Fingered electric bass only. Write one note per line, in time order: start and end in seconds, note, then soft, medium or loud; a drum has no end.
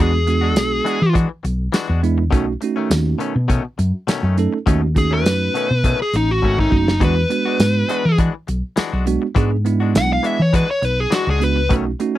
0.00 0.57 E2 medium
0.57 0.79 B1 medium
1.02 1.24 E3 medium
1.44 1.67 B1 medium
1.89 2.32 E2 medium
2.32 2.55 B1 medium
2.90 3.13 D#2 medium
3.36 3.58 B2 loud
3.79 3.91 F#2 medium
4.08 muted fingered electric bass stroke soft
4.23 4.46 F#2 medium
4.67 5.25 D#2 medium
5.25 5.48 F#2 medium
5.71 5.93 B2 medium
6.13 6.40 A1 medium
6.43 6.69 G#1 medium
6.72 7.03 F#1 medium
7.01 7.24 E2 medium
7.60 7.82 G#2 medium
8.05 8.28 E3 loud
8.48 8.60 B1 medium
8.78 muted fingered electric bass stroke soft
8.93 9.16 B1 medium
9.36 9.96 G#2 medium
9.95 10.17 B1 medium
10.40 10.62 E3 medium
10.82 11.05 B1 medium
11.27 11.70 C#2 medium
11.70 11.93 B1 medium